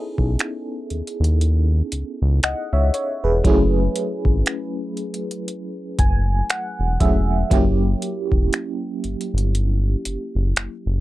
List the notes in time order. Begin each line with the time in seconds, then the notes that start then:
Already playing: B3 C#4 D#4 E4 G#4 A4
0.18 B1, kick
0.39 finger snap, closed hi-hat
0.90 D#2, closed hi-hat
1.07 closed hi-hat
1.20 D#2, closed hi-hat
1.41 closed hi-hat
1.92 C#2, closed hi-hat
2.22 C#2
2.43 C#2 D#5 F#5, finger snap, closed hi-hat
2.73 C#2 C#5 E5
2.94 C#5, closed hi-hat
3.24 E1 G#4 B4
3.44 F#1 F#3 A3 C#4 E4 G#4, kick, closed hi-hat
3.96 closed hi-hat
4.25 G#1, kick
4.46 finger snap, closed hi-hat
4.97 closed hi-hat
5.14 closed hi-hat
5.31 closed hi-hat
5.48 closed hi-hat
5.99 F#1 G#5, kick, closed hi-hat
6.50 F#5, finger snap, closed hi-hat
6.80 E1
7.00 E1 F#3 A3 C#4 E4 G#4 E5, kick, closed hi-hat
7.50 F#1 F#3 A#3 C#4 E4 G4, kick, closed hi-hat
8.02 closed hi-hat
8.32 E1, kick
8.53 finger snap, closed hi-hat
9.04 G1, closed hi-hat
9.21 closed hi-hat
9.34 G1
9.38 closed hi-hat
9.55 closed hi-hat
10.05 F#1, closed hi-hat
10.35 F#1
10.56 F#1, finger snap, closed hi-hat
10.86 F#1